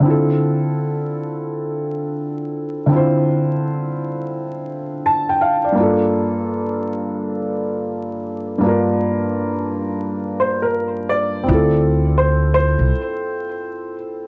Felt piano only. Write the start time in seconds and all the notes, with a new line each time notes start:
0.00 D3 C4
0.05 E4 F4
0.10 A4
2.86 D3 C4
2.92 E4 F4
2.96 C5
5.06 A5
5.29 G5
5.41 F5
5.64 D5
5.72 G2 A#3
5.77 D4 F4
5.82 A4
8.58 G2 A#3
8.63 D4 F4
8.68 A#4
11.43 C4 E4
11.50 F4 A4